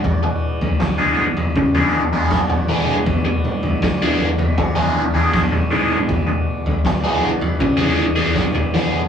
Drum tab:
SD |----o-------o---|----o-------o---|----o-------o-o-|
T2 |------------o-oo|--o---------o-oo|------------o---|
FT |o--o---o-o---o--|o--o---o-o---o--|o--o---o-o---o-o|
BD |o---o---o---o---|o---o---o---o---|o---o---o---o---|